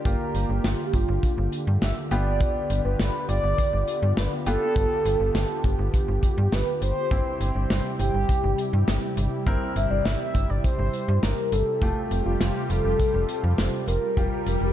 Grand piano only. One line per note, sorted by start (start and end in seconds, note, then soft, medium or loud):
0.05 2.07 A#3 medium
0.05 2.07 F4 medium
0.05 2.07 G4 medium
2.11 4.43 B3 medium
2.11 4.43 F4 medium
2.11 4.43 G4 medium
4.46 6.78 B3 medium
4.46 6.78 F4 medium
4.46 6.78 G4 medium
7.11 9.43 C4 medium
7.11 9.43 E4 medium
7.11 9.43 G4 medium
9.46 11.78 C4 medium
9.46 11.78 E4 medium
9.46 11.78 A#4 medium
11.82 14.13 A3 medium
11.82 14.13 F4 medium
11.82 14.13 G4 medium
14.17 14.73 G3 medium
14.17 14.73 F4 medium
14.17 14.73 G4 medium